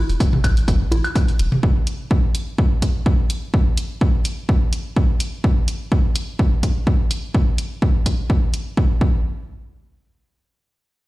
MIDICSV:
0, 0, Header, 1, 3, 480
1, 0, Start_track
1, 0, Tempo, 476190
1, 1644, Time_signature, 4, 2, 24, 8
1, 11160, End_track
2, 0, Start_track
2, 0, Title_t, "Sub bass"
2, 0, Program_c, 0, 38
2, 94, Note_on_c, 0, 28, 86
2, 168, Note_off_c, 0, 28, 0
2, 445, Note_on_c, 0, 33, 85
2, 613, Note_off_c, 0, 33, 0
2, 685, Note_on_c, 0, 31, 87
2, 853, Note_off_c, 0, 31, 0
2, 925, Note_on_c, 0, 33, 85
2, 1012, Note_off_c, 0, 33, 0
2, 1405, Note_on_c, 0, 28, 88
2, 1492, Note_off_c, 0, 28, 0
2, 11160, End_track
3, 0, Start_track
3, 0, Title_t, "Drums"
3, 96, Note_on_c, 9, 42, 29
3, 196, Note_off_c, 9, 42, 0
3, 205, Note_on_c, 9, 36, 125
3, 207, Note_on_c, 9, 42, 55
3, 305, Note_off_c, 9, 36, 0
3, 308, Note_off_c, 9, 42, 0
3, 333, Note_on_c, 9, 47, 83
3, 434, Note_off_c, 9, 47, 0
3, 444, Note_on_c, 9, 36, 59
3, 444, Note_on_c, 9, 76, 60
3, 447, Note_on_c, 9, 42, 91
3, 544, Note_off_c, 9, 76, 0
3, 545, Note_off_c, 9, 36, 0
3, 547, Note_off_c, 9, 42, 0
3, 575, Note_on_c, 9, 42, 37
3, 676, Note_off_c, 9, 42, 0
3, 684, Note_on_c, 9, 36, 111
3, 686, Note_on_c, 9, 42, 58
3, 785, Note_off_c, 9, 36, 0
3, 787, Note_off_c, 9, 42, 0
3, 923, Note_on_c, 9, 61, 74
3, 926, Note_on_c, 9, 42, 85
3, 1024, Note_off_c, 9, 61, 0
3, 1027, Note_off_c, 9, 42, 0
3, 1053, Note_on_c, 9, 76, 60
3, 1055, Note_on_c, 9, 42, 27
3, 1154, Note_off_c, 9, 76, 0
3, 1156, Note_off_c, 9, 42, 0
3, 1164, Note_on_c, 9, 36, 118
3, 1166, Note_on_c, 9, 42, 56
3, 1265, Note_off_c, 9, 36, 0
3, 1267, Note_off_c, 9, 42, 0
3, 1295, Note_on_c, 9, 42, 37
3, 1396, Note_off_c, 9, 42, 0
3, 1405, Note_on_c, 9, 42, 85
3, 1506, Note_off_c, 9, 42, 0
3, 1533, Note_on_c, 9, 47, 69
3, 1633, Note_off_c, 9, 47, 0
3, 1645, Note_on_c, 9, 36, 112
3, 1745, Note_off_c, 9, 36, 0
3, 1884, Note_on_c, 9, 42, 83
3, 1985, Note_off_c, 9, 42, 0
3, 2125, Note_on_c, 9, 36, 113
3, 2225, Note_off_c, 9, 36, 0
3, 2366, Note_on_c, 9, 42, 86
3, 2466, Note_off_c, 9, 42, 0
3, 2605, Note_on_c, 9, 36, 106
3, 2706, Note_off_c, 9, 36, 0
3, 2845, Note_on_c, 9, 36, 59
3, 2846, Note_on_c, 9, 42, 89
3, 2946, Note_off_c, 9, 36, 0
3, 2946, Note_off_c, 9, 42, 0
3, 3085, Note_on_c, 9, 36, 112
3, 3186, Note_off_c, 9, 36, 0
3, 3325, Note_on_c, 9, 42, 87
3, 3426, Note_off_c, 9, 42, 0
3, 3565, Note_on_c, 9, 36, 103
3, 3666, Note_off_c, 9, 36, 0
3, 3805, Note_on_c, 9, 42, 86
3, 3906, Note_off_c, 9, 42, 0
3, 4045, Note_on_c, 9, 36, 110
3, 4146, Note_off_c, 9, 36, 0
3, 4284, Note_on_c, 9, 42, 82
3, 4385, Note_off_c, 9, 42, 0
3, 4524, Note_on_c, 9, 36, 102
3, 4625, Note_off_c, 9, 36, 0
3, 4764, Note_on_c, 9, 42, 82
3, 4865, Note_off_c, 9, 42, 0
3, 5005, Note_on_c, 9, 36, 105
3, 5105, Note_off_c, 9, 36, 0
3, 5244, Note_on_c, 9, 42, 84
3, 5344, Note_off_c, 9, 42, 0
3, 5484, Note_on_c, 9, 36, 105
3, 5585, Note_off_c, 9, 36, 0
3, 5724, Note_on_c, 9, 42, 84
3, 5825, Note_off_c, 9, 42, 0
3, 5964, Note_on_c, 9, 36, 105
3, 6065, Note_off_c, 9, 36, 0
3, 6205, Note_on_c, 9, 42, 84
3, 6306, Note_off_c, 9, 42, 0
3, 6444, Note_on_c, 9, 36, 99
3, 6545, Note_off_c, 9, 36, 0
3, 6684, Note_on_c, 9, 36, 55
3, 6684, Note_on_c, 9, 42, 84
3, 6785, Note_off_c, 9, 36, 0
3, 6785, Note_off_c, 9, 42, 0
3, 6924, Note_on_c, 9, 36, 105
3, 7025, Note_off_c, 9, 36, 0
3, 7164, Note_on_c, 9, 42, 78
3, 7265, Note_off_c, 9, 42, 0
3, 7404, Note_on_c, 9, 36, 107
3, 7505, Note_off_c, 9, 36, 0
3, 7644, Note_on_c, 9, 42, 80
3, 7745, Note_off_c, 9, 42, 0
3, 7884, Note_on_c, 9, 36, 102
3, 7985, Note_off_c, 9, 36, 0
3, 8124, Note_on_c, 9, 36, 54
3, 8125, Note_on_c, 9, 42, 80
3, 8225, Note_off_c, 9, 36, 0
3, 8225, Note_off_c, 9, 42, 0
3, 8364, Note_on_c, 9, 36, 101
3, 8465, Note_off_c, 9, 36, 0
3, 8604, Note_on_c, 9, 42, 79
3, 8705, Note_off_c, 9, 42, 0
3, 8844, Note_on_c, 9, 36, 105
3, 8945, Note_off_c, 9, 36, 0
3, 9084, Note_on_c, 9, 36, 107
3, 9185, Note_off_c, 9, 36, 0
3, 11160, End_track
0, 0, End_of_file